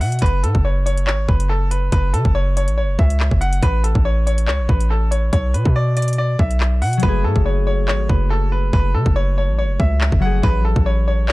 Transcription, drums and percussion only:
0.01 open hi-hat medium
0.12 closed hi-hat medium
0.19 kick loud
0.19 closed hi-hat medium
0.26 closed hi-hat medium
0.44 closed hi-hat medium
0.55 kick loud
0.87 closed hi-hat medium
0.97 closed hi-hat medium
1.07 clap loud
1.29 kick loud
1.40 closed hi-hat medium
1.71 closed hi-hat medium
1.92 kick loud
1.92 closed hi-hat medium
2.14 closed hi-hat medium
2.25 kick medium
2.57 closed hi-hat medium
2.68 closed hi-hat medium
2.99 kick loud
3.10 closed hi-hat medium
3.20 clap loud
3.31 kick medium
3.42 closed hi-hat medium
3.53 closed hi-hat medium
3.63 kick loud
3.63 closed hi-hat medium
3.84 closed hi-hat medium
3.95 kick loud
4.27 closed hi-hat medium
4.38 closed hi-hat medium
4.48 clap loud
4.69 kick loud
4.80 closed hi-hat medium
5.12 closed hi-hat medium
5.33 kick loud
5.33 closed hi-hat medium
5.54 closed hi-hat medium
5.65 kick loud
5.97 closed hi-hat medium
6.02 closed hi-hat medium
6.08 closed hi-hat medium
6.13 closed hi-hat medium
6.39 kick loud
6.51 closed hi-hat medium
6.60 clap loud
6.82 open hi-hat medium
6.93 closed hi-hat medium
7.00 kick loud
7.00 closed hi-hat medium
7.36 kick loud
7.88 clap loud
8.09 kick loud
8.73 kick loud
9.06 kick loud
9.80 kick loud
10.01 clap loud
10.12 kick medium
10.43 kick loud
10.76 kick loud
11.29 clap loud

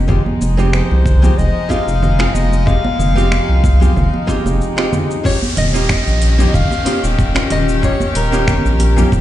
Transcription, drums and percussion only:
0.08 kick loud
0.08 muted conga soft
0.08 low conga medium
0.08 shaker soft
0.26 high conga medium
0.42 muted conga medium
0.42 shaker medium
0.59 shaker soft
0.73 finger snap medium
0.73 high conga medium
0.73 shaker soft
0.91 muted conga soft
1.06 kick medium
1.06 low conga medium
1.06 shaker medium
1.23 muted conga medium
1.23 high conga medium
1.23 low conga medium
1.23 shaker soft
1.39 shaker soft
1.70 kick medium
1.70 muted conga medium
1.70 high conga medium
1.70 shaker medium
1.88 shaker soft
2.03 muted conga medium
2.03 low conga medium
2.03 shaker soft
2.20 finger snap medium
2.35 high conga medium
2.35 shaker medium
2.52 muted conga medium
2.52 shaker soft
2.67 kick loud
2.67 shaker soft
2.84 muted conga medium
2.84 high conga medium
2.99 low conga medium
2.99 shaker medium
3.18 shaker soft
3.31 finger snap medium
3.31 muted conga medium
3.31 high conga medium
3.31 shaker soft
3.64 kick loud
3.64 muted conga medium
3.64 shaker medium
3.81 high conga medium
3.81 low conga medium
3.81 shaker soft
3.96 low conga medium
3.96 shaker soft
4.14 muted conga medium
4.28 kick medium
4.28 high conga medium
4.28 shaker medium
4.46 muted conga medium
4.46 shaker soft
4.61 shaker soft
4.78 finger snap medium
4.93 muted conga medium
4.93 high conga medium
4.93 low conga medium
4.93 shaker medium
5.11 shaker soft
5.25 kick loud
5.25 shaker soft
5.43 high conga loud
5.43 shaker soft
5.57 closed hi-hat loud
5.57 muted conga soft
5.57 low conga medium
5.75 shaker medium
5.89 finger snap medium
5.89 kick loud
5.89 muted conga medium
5.89 high conga medium
5.89 shaker medium
6.07 shaker soft
6.22 closed hi-hat medium
6.39 muted conga medium
6.39 high conga medium
6.39 low conga medium
6.39 shaker medium
6.54 kick loud
6.54 low conga medium
6.54 shaker medium
6.71 muted conga medium
6.71 shaker soft
6.86 closed hi-hat medium
6.86 high conga medium
7.04 shaker medium
7.19 kick loud
7.19 muted conga soft
7.19 shaker soft
7.36 finger snap medium
7.36 shaker soft
7.50 closed hi-hat medium
7.50 muted conga medium
7.50 high conga medium
7.50 low conga medium
7.69 shaker medium
7.83 kick loud
7.83 shaker medium
8.00 muted conga soft
8.00 high conga loud
8.00 shaker soft
8.15 closed hi-hat medium
8.33 muted conga medium
8.33 shaker medium
8.47 finger snap medium
8.47 kick loud
8.47 high conga medium
8.47 low conga medium
8.47 shaker medium
8.66 shaker soft
8.79 closed hi-hat medium
8.79 muted conga soft
8.97 high conga medium
8.97 low conga medium
8.97 shaker medium
9.12 kick loud
9.12 muted conga medium
9.12 shaker medium

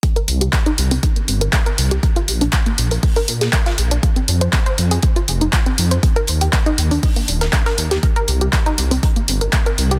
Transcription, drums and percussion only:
0.03 kick loud
0.03 closed hi-hat medium
0.16 closed hi-hat soft
0.28 closed hi-hat medium
0.28 open hi-hat loud
0.41 closed hi-hat medium
0.53 kick loud
0.53 snare loud
0.53 clap loud
0.53 closed hi-hat medium
0.66 closed hi-hat soft
0.78 closed hi-hat medium
0.78 open hi-hat loud
0.91 open hi-hat medium
1.03 kick loud
1.03 closed hi-hat medium
1.16 closed hi-hat soft
1.28 closed hi-hat medium
1.28 open hi-hat loud
1.41 closed hi-hat medium
1.53 kick loud
1.53 snare loud
1.53 clap loud
1.53 closed hi-hat medium
1.66 closed hi-hat soft
1.78 closed hi-hat medium
1.78 open hi-hat loud
1.91 closed hi-hat medium
2.03 kick loud
2.03 closed hi-hat medium
2.16 closed hi-hat soft
2.28 closed hi-hat medium
2.28 open hi-hat loud
2.41 closed hi-hat soft
2.41 closed hi-hat medium
2.52 kick loud
2.52 snare loud
2.52 clap loud
2.52 closed hi-hat medium
2.66 closed hi-hat soft
2.78 closed hi-hat medium
2.78 open hi-hat loud
2.91 open hi-hat medium
3.03 kick loud
3.03 closed hi-hat medium
3.03 open hi-hat medium
3.16 open hi-hat medium
3.28 closed hi-hat medium
3.28 open hi-hat loud
3.41 snare soft
3.41 closed hi-hat medium
3.53 kick loud
3.53 snare loud
3.53 clap loud
3.53 closed hi-hat medium
3.66 snare medium
3.66 closed hi-hat soft
3.78 closed hi-hat medium
3.78 open hi-hat loud
3.91 closed hi-hat soft
4.03 kick loud
4.03 closed hi-hat medium
4.16 closed hi-hat soft
4.28 closed hi-hat medium
4.28 open hi-hat loud
4.41 closed hi-hat soft
4.53 kick loud
4.53 snare loud
4.53 clap loud
4.53 closed hi-hat medium
4.66 closed hi-hat soft
4.78 closed hi-hat medium
4.78 open hi-hat loud
4.91 open hi-hat medium
5.02 kick loud
5.02 closed hi-hat medium
5.16 closed hi-hat soft
5.28 closed hi-hat medium
5.28 open hi-hat loud
5.41 closed hi-hat soft
5.53 kick loud
5.53 snare loud
5.53 clap loud
5.53 closed hi-hat medium
5.66 closed hi-hat soft
5.78 closed hi-hat medium
5.78 open hi-hat loud
5.91 closed hi-hat soft
6.03 kick loud
6.03 closed hi-hat medium
6.16 closed hi-hat soft
6.27 closed hi-hat medium
6.27 open hi-hat loud
6.41 closed hi-hat soft
6.53 kick loud
6.53 snare loud
6.53 clap loud
6.53 closed hi-hat medium
6.66 closed hi-hat soft
6.78 closed hi-hat medium
6.78 open hi-hat loud
6.91 open hi-hat medium
7.03 kick loud
7.03 closed hi-hat medium
7.03 open hi-hat medium
7.16 open hi-hat medium
7.28 closed hi-hat medium
7.28 open hi-hat loud
7.41 snare soft
7.41 closed hi-hat soft
7.53 kick loud
7.53 snare loud
7.53 clap loud
7.53 closed hi-hat medium
7.66 snare medium
7.66 closed hi-hat soft
7.78 closed hi-hat medium
7.78 open hi-hat loud
7.91 snare soft
7.91 closed hi-hat soft
8.03 kick loud
8.03 closed hi-hat medium
8.16 closed hi-hat soft
8.28 closed hi-hat medium
8.28 open hi-hat loud
8.41 closed hi-hat soft
8.53 kick loud
8.53 snare loud
8.53 clap loud
8.53 closed hi-hat medium
8.66 closed hi-hat soft
8.78 closed hi-hat medium
8.78 open hi-hat loud
8.91 open hi-hat medium
9.03 kick loud
9.03 closed hi-hat medium
9.16 closed hi-hat soft
9.28 closed hi-hat medium
9.28 open hi-hat loud
9.41 closed hi-hat soft
9.52 kick loud
9.52 snare loud
9.52 clap loud
9.52 closed hi-hat medium
9.66 closed hi-hat soft
9.78 closed hi-hat medium
9.78 open hi-hat loud
9.91 closed hi-hat soft

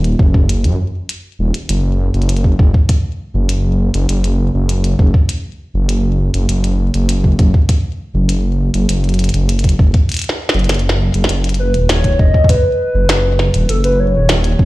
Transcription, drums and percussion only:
0.04 closed hi-hat soft
0.19 kick loud
0.34 kick loud
0.49 closed hi-hat medium
0.64 closed hi-hat soft
1.09 closed hi-hat medium
1.54 closed hi-hat soft
1.69 closed hi-hat medium
2.14 closed hi-hat soft
2.22 closed hi-hat soft
2.29 closed hi-hat medium
2.37 closed hi-hat soft
2.44 kick medium
2.59 kick loud
2.74 kick loud
2.89 kick loud
2.89 closed hi-hat medium
3.49 closed hi-hat medium
3.94 closed hi-hat soft
4.09 closed hi-hat medium
4.24 closed hi-hat soft
4.69 closed hi-hat medium
4.84 closed hi-hat soft
4.99 kick loud
5.14 kick medium
5.29 closed hi-hat medium
5.89 closed hi-hat medium
6.34 closed hi-hat soft
6.49 closed hi-hat medium
6.64 closed hi-hat soft
6.94 closed hi-hat soft
7.09 closed hi-hat medium
7.24 kick medium
7.39 kick loud
7.39 closed hi-hat soft
7.54 kick medium
7.69 kick medium
7.69 closed hi-hat medium
8.29 closed hi-hat medium
8.74 closed hi-hat soft
8.89 closed hi-hat medium
9.04 closed hi-hat soft
9.09 closed hi-hat soft
9.14 closed hi-hat soft
9.19 closed hi-hat soft
9.24 closed hi-hat soft
9.29 closed hi-hat soft
9.34 closed hi-hat soft
9.49 closed hi-hat medium
9.59 closed hi-hat medium
9.64 kick medium
9.64 closed hi-hat soft
9.69 closed hi-hat soft
9.79 kick loud
9.94 kick medium
9.94 closed hi-hat soft
10.09 closed hi-hat soft
10.12 closed hi-hat soft
10.14 closed hi-hat soft
10.17 closed hi-hat medium
10.19 closed hi-hat medium
10.22 closed hi-hat medium
10.24 closed hi-hat soft
10.29 snare medium
10.49 snare medium
10.54 closed hi-hat soft
10.59 closed hi-hat soft
10.64 closed hi-hat soft
10.69 snare medium
10.69 closed hi-hat medium
10.74 closed hi-hat soft
10.79 closed hi-hat soft
10.89 snare medium
11.14 closed hi-hat medium
11.24 snare loud
11.29 closed hi-hat medium
11.44 closed hi-hat soft
11.49 closed hi-hat soft
11.54 closed hi-hat soft
11.74 closed hi-hat soft
11.89 snare loud
11.89 closed hi-hat medium
12.04 kick medium
12.04 closed hi-hat soft
12.19 kick loud
12.34 kick medium
12.44 kick medium
12.49 kick loud
12.49 closed hi-hat medium
12.54 kick medium
13.09 snare loud
13.09 closed hi-hat medium
13.39 snare medium
13.54 closed hi-hat medium
13.69 closed hi-hat medium
13.84 closed hi-hat soft
14.29 snare loud
14.29 closed hi-hat medium
14.44 closed hi-hat soft
14.59 kick loud

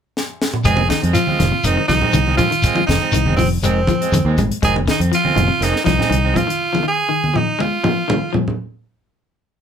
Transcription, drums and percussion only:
0.17 snare soft
0.42 snare medium
0.54 mid tom medium
0.64 kick medium
0.64 closed hi-hat medium
0.64 high conga soft
0.64 shekere medium
0.77 high conga medium
0.89 kick medium
0.89 snare medium
0.89 closed hi-hat soft
0.89 shekere soft
1.04 closed hi-hat soft
1.14 closed hi-hat medium
1.14 high conga soft
1.14 shekere medium
1.27 high conga medium
1.39 snare soft
1.39 closed hi-hat soft
1.39 high conga medium
1.39 low conga medium
1.39 shekere soft
1.64 closed hi-hat medium
1.64 shekere medium
1.89 kick medium
1.89 snare soft
1.89 closed hi-hat soft
1.89 high conga medium
1.89 shekere soft
2.01 low conga medium
2.13 closed hi-hat medium
2.13 high conga medium
2.13 shekere medium
2.27 high conga medium
2.38 kick medium
2.38 closed hi-hat medium
2.38 high conga soft
2.38 low conga medium
2.38 shekere soft
2.52 closed hi-hat soft
2.62 kick medium
2.62 closed hi-hat medium
2.62 high conga soft
2.62 shekere medium
2.75 high conga medium
2.88 kick medium
2.88 snare medium
2.88 closed hi-hat medium
2.88 shekere soft
3.12 closed hi-hat medium
3.12 high conga soft
3.12 shekere medium
3.26 high conga medium
3.37 kick medium
3.37 open hi-hat medium
3.37 high conga medium
3.37 low conga medium
3.37 shekere soft
3.63 closed hi-hat medium
3.63 shekere medium
3.87 kick medium
3.87 closed hi-hat soft
3.87 high conga medium
3.87 shekere soft
4.02 closed hi-hat soft
4.12 closed hi-hat medium
4.12 high conga medium
4.12 shekere medium
4.38 kick medium
4.38 closed hi-hat soft
4.38 high conga soft
4.38 low conga medium
4.38 shekere soft
4.51 closed hi-hat soft
4.62 kick medium
4.62 closed hi-hat medium
4.62 high conga soft
4.76 high conga medium
4.88 kick medium
4.88 snare medium
4.88 closed hi-hat soft
5.01 closed hi-hat medium
5.12 closed hi-hat medium
5.12 high conga soft
5.25 high conga medium
5.36 closed hi-hat soft
5.36 high conga medium
5.36 low conga medium
5.62 snare soft
5.62 closed hi-hat medium
5.76 snare soft
5.86 kick medium
5.86 snare soft
5.86 closed hi-hat soft
5.86 high conga loud
6.00 snare soft
6.00 low conga medium
6.11 closed hi-hat medium
6.11 high conga medium
6.36 kick medium
6.36 closed hi-hat medium
6.36 high conga soft
6.36 low conga medium
6.50 closed hi-hat medium
6.61 high conga soft
6.75 high conga medium
7.11 high conga soft
7.24 high conga medium
7.36 low conga medium
7.60 high conga medium
7.84 low conga medium
8.10 low conga medium
8.34 low conga medium
8.48 low conga medium

